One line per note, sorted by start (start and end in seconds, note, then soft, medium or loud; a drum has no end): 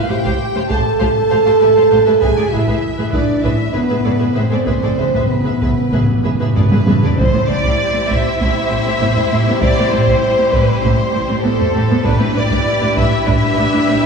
0.00 0.11 F4 medium
0.09 0.16 A1 soft
0.09 0.15 A2 soft
0.09 0.16 G4 soft
0.09 0.70 G4 medium
0.09 0.16 C5 soft
0.09 0.15 F5 soft
0.09 0.70 G5 medium
0.23 0.31 A2 medium
0.23 0.32 G4 medium
0.23 0.32 C5 medium
0.23 0.29 F5 medium
0.23 taiko medium
0.54 0.62 A2 soft
0.54 0.62 G4 soft
0.54 0.62 C5 soft
0.54 0.61 F5 soft
0.68 0.77 A1 medium
0.68 0.76 A2 medium
0.68 0.76 G4 medium
0.68 0.99 A4 medium
0.68 0.76 C5 medium
0.68 0.75 F5 medium
0.68 0.98 A5 medium
0.68 taiko medium
0.99 1.08 A1 medium
0.99 1.06 A2 medium
0.99 1.07 G4 medium
0.99 2.19 A4 loud
0.99 1.07 C5 medium
0.99 1.06 F5 medium
0.99 2.19 A5 medium
0.99 taiko medium
1.31 1.38 A1 soft
1.31 1.38 A2 soft
1.31 1.37 G4 soft
1.31 1.37 C5 soft
1.31 1.37 F5 soft
1.44 1.52 A2 medium
1.44 1.52 G4 medium
1.44 1.52 C5 medium
1.44 1.51 F5 medium
1.60 1.68 A1 soft
1.60 1.68 A2 soft
1.60 1.67 G4 soft
1.60 1.67 B4 medium
1.60 1.68 E5 soft
1.76 1.83 A2 soft
1.76 1.82 G4 soft
1.76 1.82 C5 soft
1.76 1.83 F5 medium
1.91 1.98 A1 medium
1.91 1.98 A2 medium
1.91 1.97 G4 medium
1.91 1.97 C5 medium
1.91 1.98 F5 medium
2.06 2.14 A2 soft
2.06 2.13 G4 medium
2.06 2.13 B4 medium
2.06 2.12 E5 soft
2.21 2.29 A1 medium
2.21 2.29 A2 soft
2.21 2.29 A2 medium
2.21 2.28 G#4 medium
2.21 2.52 G#4 medium
2.21 2.28 B4 medium
2.21 2.28 E5 medium
2.21 2.52 G#5 medium
2.21 taiko medium
2.37 2.44 A2 soft
2.37 2.44 G#4 soft
2.37 2.44 A4 soft
2.37 2.43 D5 soft
2.45 2.51 A2 soft
2.52 2.59 A1 soft
2.52 2.59 A2 soft
2.52 3.13 E4 medium
2.52 2.59 G#4 soft
2.52 2.59 B4 soft
2.52 3.13 E5 medium
2.52 2.59 E5 soft
2.60 2.66 A2 soft
2.67 2.73 A2 soft
2.67 2.74 A2 medium
2.67 2.75 G#4 medium
2.67 2.74 B4 medium
2.67 2.74 E5 medium
2.67 taiko medium
2.74 2.81 A2 soft
2.82 2.89 A2 soft
2.90 2.96 A2 soft
2.97 3.03 A2 soft
2.97 3.05 A2 soft
2.97 3.05 G#4 soft
2.97 3.05 B4 soft
2.97 3.04 E5 soft
3.05 3.10 A2 soft
3.11 3.20 A1 medium
3.11 3.18 A2 soft
3.11 3.20 A2 medium
3.11 3.44 D4 medium
3.11 3.19 G#4 medium
3.11 3.19 B4 medium
3.11 3.43 D5 medium
3.11 3.20 E5 medium
3.11 taiko medium
3.27 3.33 A2 soft
3.34 3.40 A2 soft
3.41 3.50 A1 medium
3.41 3.48 A2 soft
3.41 3.50 A2 medium
3.41 3.74 E4 medium
3.41 3.49 G#4 medium
3.41 3.50 B4 medium
3.41 3.74 E5 medium
3.41 3.50 E5 medium
3.41 taiko medium
3.49 3.54 A2 soft
3.56 3.63 A2 soft
3.65 3.70 A2 soft
3.71 3.80 A1 soft
3.71 3.78 A2 soft
3.71 3.81 A2 soft
3.71 4.36 B3 medium
3.71 3.80 G#4 soft
3.71 4.35 B4 medium
3.71 3.80 B4 soft
3.71 3.80 E5 soft
3.79 3.85 A2 soft
3.86 3.92 A2 soft
3.86 3.95 G#4 medium
3.86 3.95 B4 soft
3.86 3.95 E5 soft
3.90 3.96 A2 medium
3.90 3.99 A2 soft
4.00 4.07 A2 soft
4.04 4.11 A1 soft
4.04 4.12 A2 soft
4.04 4.11 G#4 soft
4.04 4.11 A4 soft
4.04 4.11 D5 soft
4.08 4.14 A2 soft
4.15 4.23 A2 soft
4.15 4.25 G#4 soft
4.15 4.25 B4 soft
4.15 4.25 E5 soft
4.21 4.27 A2 soft
4.21 4.31 A2 soft
4.32 4.42 A1 medium
4.32 4.38 A2 soft
4.32 4.42 A2 medium
4.32 4.41 G#4 medium
4.32 4.40 B4 medium
4.32 4.66 C5 medium
4.32 4.42 E5 soft
4.36 4.46 A2 soft
4.36 4.65 C4 medium
4.47 4.53 A2 soft
4.47 4.57 G#4 soft
4.47 4.57 A4 soft
4.52 4.58 A2 soft
4.52 4.59 A2 soft
4.52 4.59 D5 soft
4.61 4.68 A2 soft
4.66 4.73 A1 medium
4.66 4.73 A2 medium
4.66 5.28 C4 medium
4.66 4.72 G#4 medium
4.66 4.72 B4 soft
4.66 5.28 C5 medium
4.66 4.73 E5 medium
4.66 taiko medium
4.70 4.76 A2 soft
4.77 4.83 A2 soft
4.82 4.89 A2 soft
4.82 4.91 A2 soft
4.82 4.89 G#4 soft
4.82 4.88 A4 soft
4.82 4.90 D5 soft
4.92 4.99 A2 soft
4.97 5.04 A1 soft
4.97 5.04 A2 soft
4.97 5.07 A2 soft
4.97 5.04 G#4 soft
4.97 5.04 B4 soft
4.97 5.04 E5 soft
5.08 5.15 A2 soft
5.14 5.20 A2 medium
5.14 5.23 A2 soft
5.14 5.20 G#4 soft
5.14 5.20 B4 soft
5.14 5.21 E5 soft
5.14 taiko medium
5.24 5.31 A2 soft
5.24 6.54 B3 medium
5.29 5.39 A2 soft
5.29 6.55 B4 soft
5.41 5.46 A2 soft
5.41 5.51 G#4 soft
5.41 5.51 B4 soft
5.46 5.52 A2 soft
5.46 5.54 A2 medium
5.46 5.52 E5 soft
5.56 5.62 A2 medium
5.60 5.66 A1 medium
5.60 5.67 A2 soft
5.60 5.69 A2 medium
5.60 5.68 G#4 soft
5.60 5.67 B4 medium
5.60 5.69 E5 soft
5.60 taiko medium
5.71 5.77 A2 medium
5.79 5.85 A2 soft
5.86 5.92 A2 medium
5.92 5.98 A1 medium
5.92 5.99 A2 soft
5.92 6.00 A2 medium
5.92 5.99 G#4 medium
5.92 5.99 B4 soft
5.92 5.99 E5 soft
5.92 taiko medium
6.01 6.08 A2 medium
6.09 6.16 A2 medium
6.17 6.22 A2 medium
6.24 6.30 A1 soft
6.24 6.31 A2 medium
6.24 6.30 A2 soft
6.24 6.30 G#4 soft
6.24 6.30 B4 soft
6.24 6.30 E5 soft
6.32 6.38 A2 medium
6.40 6.46 A2 medium
6.40 6.46 G#4 soft
6.40 6.46 B4 soft
6.40 6.47 E5 soft
6.47 6.53 A2 medium
6.55 6.61 A1 soft
6.55 6.60 A2 medium
6.55 6.62 A2 soft
6.55 6.62 G#4 soft
6.55 6.62 A4 soft
6.55 7.14 B4 medium
6.55 6.62 D5 soft
6.55 taiko low-mid medium
6.61 6.69 A2 medium
6.70 6.75 A2 medium
6.70 6.77 A2 soft
6.70 6.78 G#4 soft
6.70 6.79 B4 soft
6.70 6.78 E5 soft
6.70 taiko high medium
6.77 6.83 A2 medium
6.85 6.93 A1 soft
6.85 6.91 A2 medium
6.85 6.93 A2 medium
6.85 6.93 G#4 soft
6.85 6.93 B4 soft
6.85 6.94 E5 soft
6.85 taiko high medium
6.92 6.98 A2 medium
6.99 7.06 A2 medium
6.99 7.09 G#4 soft
6.99 7.09 A4 soft
6.99 taiko low medium
7.03 7.09 A2 soft
7.03 7.14 A2 medium
7.03 7.10 D5 soft
7.16 7.24 A1 medium
7.16 7.24 A2 medium
7.16 12.01 G3 medium
7.16 12.01 C4 medium
7.16 7.24 C4 medium
7.16 12.02 E4 medium
7.16 12.02 G4 medium
7.16 7.48 C5 medium
7.16 12.02 C5 medium
7.16 taiko medium
7.34 7.40 A2 soft
7.34 7.40 B3 soft
7.48 7.55 A1 soft
7.48 7.55 A2 medium
7.48 7.55 C4 soft
7.48 8.09 D5 medium
7.64 7.70 A2 medium
7.64 7.70 C4 medium
7.64 taiko medium
7.94 8.00 A2 soft
7.94 8.00 C4 soft
8.10 8.16 A1 medium
8.10 8.16 A2 medium
8.10 8.16 C4 medium
8.10 8.38 E5 medium
8.10 taiko medium
8.39 8.46 A1 medium
8.39 8.46 A2 medium
8.39 8.46 C4 medium
8.39 9.59 E5 medium
8.39 taiko medium
8.70 8.77 A1 soft
8.70 8.77 A2 soft
8.70 8.76 C4 medium
8.85 8.92 A2 medium
8.85 8.91 C4 medium
9.01 9.07 A1 soft
9.01 9.07 A2 soft
9.01 9.07 B3 medium
9.16 9.23 A2 soft
9.16 9.22 C4 medium
9.16 taiko low soft
9.31 9.37 A1 medium
9.31 9.38 A2 medium
9.31 9.38 C4 medium
9.47 9.53 A2 medium
9.47 9.54 B3 medium
9.62 9.68 A1 medium
9.62 9.68 A2 medium
9.62 9.68 C4 medium
9.62 9.92 D5 medium
9.62 taiko medium
9.78 9.84 A2 soft
9.78 9.84 B3 soft
9.91 9.99 A1 soft
9.91 9.99 A2 soft
9.91 9.99 C4 soft
9.91 10.53 C5 medium
10.07 10.15 A2 medium
10.07 10.14 C4 medium
10.07 taiko medium
10.38 10.45 A2 soft
10.38 10.44 C4 soft
10.52 10.60 A1 medium
10.52 10.60 A2 medium
10.52 10.58 C4 medium
10.52 10.83 B4 medium
10.52 taiko medium
10.82 10.90 A1 medium
10.82 10.91 A2 medium
10.82 10.89 C4 medium
10.82 11.42 C5 medium
10.82 taiko medium
11.14 11.21 A1 medium
11.14 11.21 A2 soft
11.14 11.20 C4 medium
11.29 11.36 A2 medium
11.29 11.35 C4 medium
11.43 11.51 A1 soft
11.43 11.51 A2 soft
11.43 11.50 B3 medium
11.43 12.04 A4 medium
11.59 11.67 A2 medium
11.59 11.65 C4 soft
11.59 taiko low soft
11.74 11.81 A1 medium
11.74 11.81 A2 medium
11.74 11.80 C4 medium
11.90 11.96 A2 medium
11.90 11.96 B3 medium
12.05 12.12 A1 medium
12.05 12.93 A2 medium
12.05 12.12 A2 medium
12.05 14.06 G3 medium
12.05 12.11 D4 medium
12.05 14.06 D4 medium
12.05 14.06 E4 medium
12.05 14.06 G4 medium
12.05 12.36 B4 medium
12.05 14.06 B4 medium
12.05 taiko medium
12.19 12.27 A2 soft
12.19 12.26 C4 soft
12.34 12.42 A1 medium
12.34 12.42 A2 medium
12.34 12.40 D4 soft
12.34 12.97 D5 medium
12.50 12.57 A2 medium
12.50 12.56 D4 medium
12.50 taiko medium
12.81 12.88 A2 medium
12.81 12.87 D4 soft
12.96 13.03 A1 medium
12.96 13.03 A2 medium
12.96 13.02 D4 medium
12.96 13.26 E5 medium
12.96 taiko medium
13.26 13.34 A1 medium
13.26 13.34 A2 medium
13.26 13.32 D4 medium
13.26 14.06 E5 medium
13.26 taiko medium
13.57 13.64 A1 medium
13.57 13.64 A2 medium
13.57 13.63 D4 medium
13.72 13.79 A2 medium
13.72 13.78 D4 medium
13.87 13.95 A1 medium
13.87 13.95 A2 medium
13.87 13.93 C4 medium